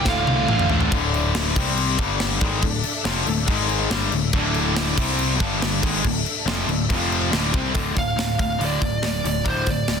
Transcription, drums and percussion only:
0.05 kick loud
0.05 snare medium
0.27 high tom medium
0.48 mid tom medium
0.59 mid tom medium
0.70 floor tom loud
0.81 floor tom medium
0.92 kick loud
0.92 crash medium
1.14 crash medium
1.35 snare loud
1.35 crash medium
1.56 kick loud
1.56 crash loud
1.77 crash medium
1.99 kick loud
1.99 crash medium
2.20 snare loud
2.20 crash medium
2.41 kick loud
2.41 crash medium
2.62 kick medium
2.62 crash medium
2.84 crash medium
3.05 snare loud
3.05 crash medium
3.27 crash medium
3.48 kick loud
3.48 crash medium
3.69 crash medium
3.91 snare loud
3.91 crash medium
4.12 crash medium
4.33 kick loud
4.33 crash medium
4.54 crash medium
4.76 snare loud
4.76 crash medium
4.98 kick loud
4.98 crash medium
5.19 crash medium
5.40 kick loud
5.40 crash medium
5.62 snare loud
5.62 crash medium
5.83 kick loud
5.83 crash loud
6.04 kick medium
6.04 crash medium
6.26 crash medium
6.48 snare loud
6.69 crash medium
6.90 kick loud
6.90 crash medium
7.12 crash medium
7.33 snare loud
7.33 crash medium
7.54 kick loud
7.75 kick loud
7.75 open hi-hat medium
7.97 kick medium
7.97 open hi-hat soft
8.19 snare loud
8.19 open hi-hat medium
8.39 kick medium
8.39 open hi-hat medium
8.61 open hi-hat medium
8.82 kick medium
8.82 open hi-hat medium
9.03 snare loud
9.03 open hi-hat medium
9.25 open hi-hat medium
9.46 kick medium
9.46 open hi-hat medium
9.66 kick medium
9.66 open hi-hat medium
9.88 snare loud
9.88 open hi-hat medium

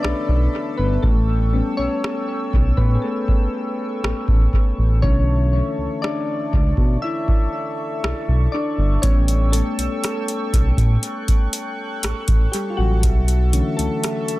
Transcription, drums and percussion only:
0.04 cross-stick loud
1.03 kick loud
2.04 cross-stick medium
2.53 kick medium
2.77 kick medium
3.28 kick medium
4.04 cross-stick loud
4.28 kick medium
4.53 kick medium
5.03 kick loud
6.04 cross-stick medium
6.53 kick loud
6.77 kick medium
7.28 kick medium
8.04 cross-stick loud
9.03 kick loud
9.03 closed hi-hat medium
9.28 closed hi-hat soft
9.53 closed hi-hat medium
9.79 closed hi-hat soft
10.04 cross-stick medium
10.04 closed hi-hat medium
10.28 closed hi-hat soft
10.53 kick loud
10.53 closed hi-hat medium
10.77 kick medium
10.77 closed hi-hat soft
11.03 closed hi-hat medium
11.28 kick medium
11.28 closed hi-hat soft
11.53 closed hi-hat medium
12.03 cross-stick loud
12.03 closed hi-hat medium
12.28 kick medium
12.28 closed hi-hat soft
12.53 closed hi-hat medium
13.03 kick loud
13.03 closed hi-hat medium
13.28 closed hi-hat soft
13.53 closed hi-hat medium
13.79 closed hi-hat soft
14.04 cross-stick medium
14.04 closed hi-hat medium
14.28 closed hi-hat soft

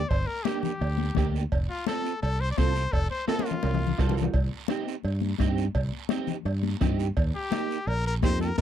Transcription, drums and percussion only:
0.11 bombo low medium
0.11 cowbell loud
0.11 long guiro medium
0.27 high conga soft
0.45 bombo rim medium
0.45 cowbell medium
0.45 high conga medium
0.45 short guiro medium
0.63 low conga medium
0.63 short guiro medium
0.81 bombo rim medium
0.81 cowbell medium
0.81 high conga soft
0.81 long guiro medium
0.98 high conga medium
1.15 bombo low medium
1.15 bombo rim medium
1.15 cowbell medium
1.15 high conga medium
1.15 low conga medium
1.15 short guiro medium
1.36 short guiro medium
1.52 bombo low medium
1.52 cowbell loud
1.52 long guiro medium
1.69 high conga soft
1.87 bombo rim medium
1.87 cowbell medium
1.87 high conga medium
1.87 short guiro medium
2.05 short guiro medium
2.22 cowbell medium
2.22 high conga soft
2.22 long guiro medium
2.58 bombo low medium
2.58 bombo rim medium
2.58 cowbell medium
2.58 high conga medium
2.58 short guiro medium
2.75 short guiro medium
2.93 bombo low medium
2.93 cowbell loud
2.93 long guiro medium
3.11 high conga soft
3.28 bombo rim medium
3.28 cowbell medium
3.28 high conga medium
3.28 high timbale loud
3.28 short guiro medium
3.39 high conga medium
3.39 high timbale medium
3.46 short guiro medium
3.51 low conga medium
3.51 high timbale medium
3.63 cowbell medium
3.63 high conga medium
3.63 high timbale medium
3.63 long guiro medium
3.74 low conga medium
3.74 high timbale medium
3.87 low conga medium
3.98 bombo low medium
3.98 bombo rim medium
3.98 cowbell medium
3.98 low timbale medium
3.98 short guiro medium
4.09 low conga medium
4.09 low timbale loud
4.17 low conga medium
4.17 short guiro medium
4.23 low timbale loud
4.34 bombo low medium
4.34 cowbell loud
4.34 long guiro medium
4.51 high conga soft
4.68 bombo rim medium
4.68 cowbell medium
4.68 high conga medium
4.68 short guiro medium
4.88 short guiro medium
5.04 cowbell medium
5.04 high conga soft
5.04 long guiro medium
5.21 high conga medium
5.38 bombo low medium
5.38 bombo rim medium
5.38 cowbell medium
5.38 high conga medium
5.38 short guiro medium
5.58 short guiro medium
5.75 bombo low medium
5.75 cowbell loud
5.75 long guiro medium
5.92 high conga soft
6.09 bombo rim medium
6.09 cowbell medium
6.09 high conga medium
6.09 short guiro medium
6.27 low conga medium
6.27 short guiro medium
6.45 bombo rim medium
6.45 cowbell medium
6.45 high conga soft
6.45 long guiro medium
6.63 high conga medium
6.81 bombo low medium
6.81 bombo rim medium
6.81 cowbell medium
6.81 high conga medium
6.81 low conga medium
6.81 low timbale medium
6.81 short guiro medium
6.99 short guiro medium
7.17 bombo low medium
7.17 cowbell loud
7.17 long guiro medium
7.34 high conga soft
7.52 bombo rim medium
7.52 cowbell medium
7.52 high conga loud
7.52 short guiro medium
7.71 short guiro medium
7.88 cowbell medium
7.88 high conga soft
7.88 long guiro medium
8.22 bombo low medium
8.22 bombo rim medium
8.22 cowbell medium
8.22 high conga medium
8.22 short guiro medium
8.40 high conga medium
8.40 short guiro medium
8.58 high conga medium

